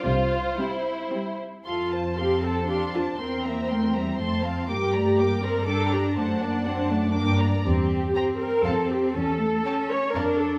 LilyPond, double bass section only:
\new Staff \with { instrumentName = "Double bass section" } { \clef bass \time 3/4 \key f \major \tempo 4 = 120 c,4 r2 | f,2. | e,2 f,4 | g,2. |
fis,2 g,4 | e,4 r4 f,4 | e,4 r4 f,4 | }